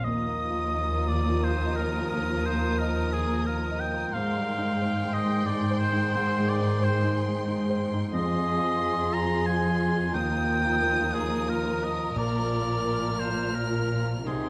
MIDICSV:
0, 0, Header, 1, 8, 480
1, 0, Start_track
1, 0, Key_signature, -3, "major"
1, 0, Tempo, 681044
1, 47, Time_signature, 3, 2, 24, 8
1, 2927, Tempo, 665927
1, 7727, Tempo, 677201
1, 9167, Tempo, 702576
1, 10293, End_track
2, 0, Start_track
2, 0, Title_t, "Violin section"
2, 0, Program_c, 0, 48
2, 50, Note_on_c, 0, 87, 51
2, 2901, Note_off_c, 0, 87, 0
2, 2922, Note_on_c, 0, 84, 58
2, 5778, Note_off_c, 0, 84, 0
2, 5804, Note_on_c, 0, 84, 65
2, 7216, Note_off_c, 0, 84, 0
2, 7238, Note_on_c, 0, 87, 59
2, 8685, Note_off_c, 0, 87, 0
2, 8697, Note_on_c, 0, 89, 50
2, 10131, Note_off_c, 0, 89, 0
2, 10133, Note_on_c, 0, 84, 39
2, 10293, Note_off_c, 0, 84, 0
2, 10293, End_track
3, 0, Start_track
3, 0, Title_t, "Oboe"
3, 0, Program_c, 1, 68
3, 28, Note_on_c, 1, 75, 81
3, 761, Note_on_c, 1, 74, 71
3, 772, Note_off_c, 1, 75, 0
3, 1012, Note_on_c, 1, 72, 66
3, 1023, Note_off_c, 1, 74, 0
3, 1242, Note_on_c, 1, 70, 65
3, 1253, Note_off_c, 1, 72, 0
3, 1475, Note_off_c, 1, 70, 0
3, 1479, Note_on_c, 1, 70, 70
3, 1733, Note_on_c, 1, 72, 71
3, 1743, Note_off_c, 1, 70, 0
3, 1965, Note_on_c, 1, 70, 74
3, 1976, Note_off_c, 1, 72, 0
3, 2201, Note_on_c, 1, 68, 68
3, 2211, Note_off_c, 1, 70, 0
3, 2439, Note_on_c, 1, 70, 66
3, 2450, Note_off_c, 1, 68, 0
3, 2680, Note_on_c, 1, 79, 80
3, 2690, Note_off_c, 1, 70, 0
3, 2917, Note_on_c, 1, 77, 76
3, 2927, Note_off_c, 1, 79, 0
3, 3635, Note_on_c, 1, 75, 79
3, 3646, Note_off_c, 1, 77, 0
3, 3868, Note_on_c, 1, 74, 80
3, 3879, Note_off_c, 1, 75, 0
3, 4106, Note_off_c, 1, 74, 0
3, 4111, Note_on_c, 1, 72, 79
3, 4357, Note_off_c, 1, 72, 0
3, 4366, Note_on_c, 1, 72, 78
3, 4611, Note_on_c, 1, 74, 73
3, 4622, Note_off_c, 1, 72, 0
3, 4863, Note_on_c, 1, 72, 75
3, 4874, Note_off_c, 1, 74, 0
3, 5097, Note_off_c, 1, 72, 0
3, 5804, Note_on_c, 1, 75, 97
3, 6518, Note_on_c, 1, 82, 86
3, 6529, Note_off_c, 1, 75, 0
3, 6754, Note_on_c, 1, 80, 76
3, 6765, Note_off_c, 1, 82, 0
3, 7240, Note_off_c, 1, 80, 0
3, 7243, Note_on_c, 1, 79, 101
3, 7959, Note_on_c, 1, 68, 73
3, 7969, Note_off_c, 1, 79, 0
3, 8208, Note_on_c, 1, 70, 61
3, 8218, Note_off_c, 1, 68, 0
3, 8455, Note_on_c, 1, 75, 73
3, 8465, Note_off_c, 1, 70, 0
3, 8692, Note_off_c, 1, 75, 0
3, 8698, Note_on_c, 1, 74, 81
3, 9406, Note_on_c, 1, 72, 64
3, 9416, Note_off_c, 1, 74, 0
3, 9650, Note_on_c, 1, 70, 64
3, 9660, Note_off_c, 1, 72, 0
3, 10026, Note_off_c, 1, 70, 0
3, 10142, Note_on_c, 1, 68, 57
3, 10293, Note_off_c, 1, 68, 0
3, 10293, End_track
4, 0, Start_track
4, 0, Title_t, "Violin section"
4, 0, Program_c, 2, 48
4, 51, Note_on_c, 2, 70, 52
4, 3382, Note_off_c, 2, 70, 0
4, 3416, Note_on_c, 2, 68, 52
4, 5788, Note_off_c, 2, 68, 0
4, 5796, Note_on_c, 2, 68, 57
4, 7212, Note_off_c, 2, 68, 0
4, 7254, Note_on_c, 2, 70, 58
4, 10131, Note_off_c, 2, 70, 0
4, 10131, Note_on_c, 2, 67, 45
4, 10293, Note_off_c, 2, 67, 0
4, 10293, End_track
5, 0, Start_track
5, 0, Title_t, "Grand piano"
5, 0, Program_c, 3, 0
5, 0, Control_c, 3, 64, 127
5, 35, Note_on_c, 3, 39, 51
5, 60, Control_c, 3, 64, 0
5, 172, Control_c, 3, 64, 127
5, 194, Note_on_c, 3, 58, 39
5, 357, Note_on_c, 3, 65, 43
5, 460, Note_off_c, 3, 58, 0
5, 525, Note_on_c, 3, 75, 44
5, 622, Note_off_c, 3, 65, 0
5, 691, Note_on_c, 3, 65, 37
5, 785, Note_off_c, 3, 75, 0
5, 854, Note_on_c, 3, 58, 37
5, 948, Note_off_c, 3, 65, 0
5, 1004, Note_on_c, 3, 65, 39
5, 1109, Note_off_c, 3, 58, 0
5, 1166, Note_on_c, 3, 75, 41
5, 1264, Note_off_c, 3, 65, 0
5, 1334, Note_on_c, 3, 65, 37
5, 1425, Note_off_c, 3, 75, 0
5, 1457, Note_off_c, 3, 39, 0
5, 1495, Note_on_c, 3, 39, 51
5, 1505, Control_c, 3, 64, 0
5, 1588, Note_off_c, 3, 65, 0
5, 1626, Control_c, 3, 64, 127
5, 1655, Note_on_c, 3, 58, 42
5, 1814, Note_on_c, 3, 65, 40
5, 1907, Note_off_c, 3, 58, 0
5, 1977, Note_on_c, 3, 75, 45
5, 2067, Note_off_c, 3, 65, 0
5, 2134, Note_on_c, 3, 65, 41
5, 2229, Note_off_c, 3, 75, 0
5, 2303, Note_on_c, 3, 58, 43
5, 2388, Note_off_c, 3, 65, 0
5, 2453, Note_on_c, 3, 65, 40
5, 2552, Note_off_c, 3, 58, 0
5, 2616, Note_on_c, 3, 75, 45
5, 2708, Note_off_c, 3, 65, 0
5, 2777, Note_on_c, 3, 65, 43
5, 2868, Note_off_c, 3, 75, 0
5, 2901, Note_off_c, 3, 39, 0
5, 2929, Note_on_c, 3, 44, 59
5, 2932, Note_off_c, 3, 65, 0
5, 2940, Control_c, 3, 64, 0
5, 3063, Control_c, 3, 64, 127
5, 3084, Note_on_c, 3, 55, 44
5, 3236, Note_on_c, 3, 63, 45
5, 3342, Note_off_c, 3, 55, 0
5, 3403, Note_on_c, 3, 72, 43
5, 3499, Note_off_c, 3, 63, 0
5, 3564, Note_on_c, 3, 63, 39
5, 3663, Note_off_c, 3, 72, 0
5, 3725, Note_on_c, 3, 56, 43
5, 3824, Note_off_c, 3, 63, 0
5, 3887, Note_on_c, 3, 63, 47
5, 3984, Note_off_c, 3, 56, 0
5, 4047, Note_on_c, 3, 72, 51
5, 4145, Note_off_c, 3, 63, 0
5, 4207, Note_on_c, 3, 63, 39
5, 4306, Note_off_c, 3, 72, 0
5, 4344, Note_off_c, 3, 44, 0
5, 4369, Note_on_c, 3, 44, 66
5, 4386, Control_c, 3, 64, 0
5, 4467, Note_off_c, 3, 63, 0
5, 4507, Control_c, 3, 64, 127
5, 4523, Note_on_c, 3, 56, 44
5, 4690, Note_on_c, 3, 63, 49
5, 4786, Note_off_c, 3, 56, 0
5, 4845, Note_on_c, 3, 72, 46
5, 4948, Note_off_c, 3, 63, 0
5, 5005, Note_on_c, 3, 63, 40
5, 5104, Note_off_c, 3, 72, 0
5, 5165, Note_on_c, 3, 56, 44
5, 5263, Note_off_c, 3, 63, 0
5, 5323, Note_on_c, 3, 63, 48
5, 5422, Note_off_c, 3, 56, 0
5, 5481, Note_on_c, 3, 72, 50
5, 5581, Note_off_c, 3, 63, 0
5, 5651, Note_on_c, 3, 63, 43
5, 5741, Note_off_c, 3, 72, 0
5, 5779, Note_off_c, 3, 44, 0
5, 5797, Note_on_c, 3, 41, 61
5, 5811, Note_off_c, 3, 63, 0
5, 5823, Control_c, 3, 64, 0
5, 5951, Control_c, 3, 64, 127
5, 5953, Note_on_c, 3, 53, 48
5, 6114, Note_on_c, 3, 65, 45
5, 6217, Note_off_c, 3, 53, 0
5, 6278, Note_on_c, 3, 68, 48
5, 6376, Note_off_c, 3, 65, 0
5, 6443, Note_on_c, 3, 65, 43
5, 6538, Note_off_c, 3, 68, 0
5, 6603, Note_on_c, 3, 53, 42
5, 6702, Note_off_c, 3, 65, 0
5, 6765, Note_on_c, 3, 65, 52
5, 6862, Note_off_c, 3, 53, 0
5, 6933, Note_on_c, 3, 68, 47
5, 7022, Note_off_c, 3, 65, 0
5, 7089, Note_on_c, 3, 65, 40
5, 7186, Note_off_c, 3, 68, 0
5, 7212, Note_off_c, 3, 41, 0
5, 7247, Note_on_c, 3, 39, 59
5, 7248, Note_off_c, 3, 65, 0
5, 7259, Control_c, 3, 64, 0
5, 7369, Control_c, 3, 64, 127
5, 7405, Note_on_c, 3, 53, 49
5, 7566, Note_on_c, 3, 65, 45
5, 7664, Note_off_c, 3, 53, 0
5, 7729, Note_on_c, 3, 70, 46
5, 7825, Note_off_c, 3, 65, 0
5, 7890, Note_on_c, 3, 65, 41
5, 7986, Note_off_c, 3, 70, 0
5, 8042, Note_on_c, 3, 53, 38
5, 8146, Note_off_c, 3, 65, 0
5, 8200, Note_on_c, 3, 65, 46
5, 8302, Note_off_c, 3, 53, 0
5, 8360, Note_on_c, 3, 70, 44
5, 8461, Note_off_c, 3, 65, 0
5, 8523, Note_on_c, 3, 65, 39
5, 8621, Note_off_c, 3, 70, 0
5, 8661, Note_off_c, 3, 39, 0
5, 8680, Note_on_c, 3, 34, 59
5, 8686, Note_off_c, 3, 65, 0
5, 8702, Control_c, 3, 64, 0
5, 8827, Control_c, 3, 64, 127
5, 8847, Note_on_c, 3, 53, 44
5, 9010, Note_on_c, 3, 65, 38
5, 9104, Note_off_c, 3, 53, 0
5, 9175, Note_on_c, 3, 70, 36
5, 9264, Note_off_c, 3, 65, 0
5, 9333, Note_on_c, 3, 65, 35
5, 9424, Note_off_c, 3, 70, 0
5, 9490, Note_on_c, 3, 53, 34
5, 9583, Note_off_c, 3, 65, 0
5, 9645, Note_on_c, 3, 65, 35
5, 9743, Note_off_c, 3, 53, 0
5, 9816, Note_on_c, 3, 70, 37
5, 9902, Note_off_c, 3, 65, 0
5, 9977, Note_on_c, 3, 65, 33
5, 10069, Note_off_c, 3, 70, 0
5, 10096, Note_off_c, 3, 34, 0
5, 10133, Note_off_c, 3, 65, 0
5, 10141, Control_c, 3, 64, 0
5, 10143, Note_on_c, 3, 36, 43
5, 10253, Control_c, 3, 64, 127
5, 10293, Note_off_c, 3, 36, 0
5, 10293, End_track
6, 0, Start_track
6, 0, Title_t, "Viola section"
6, 0, Program_c, 4, 48
6, 49, Note_on_c, 4, 65, 57
6, 2900, Note_off_c, 4, 65, 0
6, 2927, Note_on_c, 4, 79, 60
6, 5781, Note_off_c, 4, 79, 0
6, 5810, Note_on_c, 4, 65, 68
6, 8661, Note_off_c, 4, 65, 0
6, 8691, Note_on_c, 4, 65, 55
6, 10101, Note_off_c, 4, 65, 0
6, 10138, Note_on_c, 4, 63, 44
6, 10293, Note_off_c, 4, 63, 0
6, 10293, End_track
7, 0, Start_track
7, 0, Title_t, "French horn section"
7, 0, Program_c, 5, 60
7, 42, Note_on_c, 5, 70, 52
7, 46, Note_on_c, 5, 53, 55
7, 2897, Note_off_c, 5, 70, 0
7, 2899, Note_off_c, 5, 53, 0
7, 2916, Note_on_c, 5, 72, 59
7, 2918, Note_on_c, 5, 51, 60
7, 5671, Note_off_c, 5, 51, 0
7, 5671, Note_off_c, 5, 72, 0
7, 5793, Note_on_c, 5, 53, 55
7, 5796, Note_on_c, 5, 68, 63
7, 7211, Note_off_c, 5, 68, 0
7, 7237, Note_on_c, 5, 70, 59
7, 8653, Note_off_c, 5, 53, 0
7, 8656, Note_off_c, 5, 70, 0
7, 8682, Note_on_c, 5, 53, 52
7, 8682, Note_on_c, 5, 70, 51
7, 9613, Note_off_c, 5, 53, 0
7, 9613, Note_off_c, 5, 70, 0
7, 9630, Note_on_c, 5, 70, 43
7, 9636, Note_on_c, 5, 53, 42
7, 10111, Note_off_c, 5, 70, 0
7, 10114, Note_off_c, 5, 53, 0
7, 10123, Note_on_c, 5, 51, 42
7, 10124, Note_on_c, 5, 63, 46
7, 10293, Note_off_c, 5, 51, 0
7, 10293, Note_off_c, 5, 63, 0
7, 10293, End_track
8, 0, Start_track
8, 0, Title_t, "Cello section"
8, 0, Program_c, 6, 48
8, 41, Note_on_c, 6, 39, 56
8, 2896, Note_off_c, 6, 39, 0
8, 2926, Note_on_c, 6, 44, 58
8, 5780, Note_off_c, 6, 44, 0
8, 5799, Note_on_c, 6, 41, 63
8, 7213, Note_off_c, 6, 41, 0
8, 7238, Note_on_c, 6, 39, 60
8, 8685, Note_off_c, 6, 39, 0
8, 8688, Note_on_c, 6, 46, 58
8, 10100, Note_off_c, 6, 46, 0
8, 10122, Note_on_c, 6, 48, 46
8, 10293, Note_off_c, 6, 48, 0
8, 10293, End_track
0, 0, End_of_file